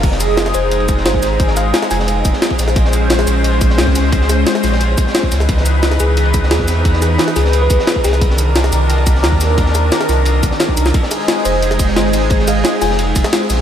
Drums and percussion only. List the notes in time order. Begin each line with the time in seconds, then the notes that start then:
0.03 kick, closed hi-hat, ride, crash
0.12 snare
0.20 closed hi-hat, ride, shaker
0.37 snare, closed hi-hat, ride, shaker
0.45 snare
0.54 closed hi-hat, ride, shaker
0.71 closed hi-hat, ride
0.80 ride
0.89 kick, closed hi-hat, ride, shaker
0.97 snare
1.06 snare, closed hi-hat, ride
1.14 kick, snare
1.23 snare, closed hi-hat, ride, shaker
1.40 kick, closed hi-hat, ride
1.48 snare
1.57 snare, closed hi-hat, ride, shaker
1.74 snare, closed hi-hat, ride, shaker
1.82 snare, ride
1.91 snare, open hi-hat, ride, shaker
2.00 snare
2.08 closed hi-hat, ride
2.25 kick, closed hi-hat, ride, shaker
2.33 snare
2.42 snare, closed hi-hat, ride
2.51 kick
2.59 snare, closed hi-hat, ride, shaker
2.68 snare
2.76 kick, closed hi-hat, ride
2.85 snare
2.93 closed hi-hat, ride, shaker
3.10 snare, closed hi-hat, ride, shaker
3.19 snare
3.27 closed hi-hat, ride, shaker
3.44 closed hi-hat, ride
3.53 ride
3.61 kick, closed hi-hat, ride, shaker
3.70 snare
3.78 snare, closed hi-hat, ride
3.87 kick, snare
3.96 snare, closed hi-hat, ride, shaker
4.12 kick, closed hi-hat, ride
4.21 snare
4.30 snare, closed hi-hat, ride, shaker
4.47 snare, closed hi-hat, ride, shaker
4.55 snare, ride
4.64 snare, open hi-hat, ride, shaker
4.72 snare
4.81 closed hi-hat, ride
4.98 kick, closed hi-hat, ride, shaker
5.07 snare
5.14 snare, closed hi-hat, ride
5.23 kick
5.31 snare, closed hi-hat, ride, shaker
5.40 snare
5.49 kick, closed hi-hat, ride
5.57 snare
5.66 closed hi-hat, ride, shaker
5.83 snare, closed hi-hat, ride, shaker
5.91 snare
6.00 closed hi-hat, ride, shaker
6.17 closed hi-hat, ride
6.25 ride
6.34 kick, closed hi-hat, ride, shaker
6.43 snare
6.51 snare, closed hi-hat, ride
6.60 kick, snare
6.68 snare, closed hi-hat, ride, shaker
6.85 kick, closed hi-hat, ride
6.93 snare
7.02 snare, closed hi-hat, ride, shaker
7.18 snare, closed hi-hat, ride, shaker
7.27 snare, ride
7.36 snare, open hi-hat, ride, shaker
7.45 snare
7.53 closed hi-hat, ride
7.70 kick, closed hi-hat, ride, shaker
7.79 snare
7.87 snare, closed hi-hat, ride
7.96 kick
8.04 snare, closed hi-hat, ride, shaker
8.13 snare
8.21 kick, closed hi-hat, ride
8.30 snare
8.38 closed hi-hat, ride, shaker
8.56 snare, closed hi-hat, ride, shaker
8.64 snare
8.73 closed hi-hat, ride, shaker
8.90 closed hi-hat, ride
8.98 ride
9.06 kick, closed hi-hat, ride, shaker
9.15 snare
9.23 snare, closed hi-hat, ride
9.32 kick, snare
9.41 snare, closed hi-hat, ride, shaker
9.58 kick, closed hi-hat, ride
9.66 snare
9.75 snare, closed hi-hat, ride, shaker
9.92 snare, closed hi-hat, ride, shaker
10.01 snare, ride
10.09 snare, open hi-hat, shaker
10.25 closed hi-hat, ride
10.43 kick, closed hi-hat, ride, shaker
10.51 snare
10.59 snare, closed hi-hat, ride
10.69 kick, snare
10.77 closed hi-hat, ride, shaker
10.86 snare, shaker
10.94 kick, closed hi-hat, ride
11.03 snare
11.11 snare, closed hi-hat, ride, ride bell, shaker
11.28 snare, closed hi-hat, ride
11.37 snare
11.45 closed hi-hat, ride, ride bell, shaker
11.62 closed hi-hat, ride
11.71 snare, ride
11.79 kick, closed hi-hat, ride, ride bell, shaker
11.88 snare
11.96 snare, closed hi-hat, ride
12.05 snare
12.13 snare, closed hi-hat, ride, ride bell, shaker
12.30 kick, closed hi-hat, ride
12.40 snare
12.48 snare, closed hi-hat, ride, ride bell, shaker
12.64 snare, closed hi-hat, ride
12.73 ride
12.82 snare, open hi-hat, ride, ride bell, shaker
12.91 snare
12.99 closed hi-hat, ride
13.16 kick, closed hi-hat, ride, ride bell, shaker
13.24 snare
13.32 snare, closed hi-hat, ride
13.50 snare, closed hi-hat, ride, ride bell, shaker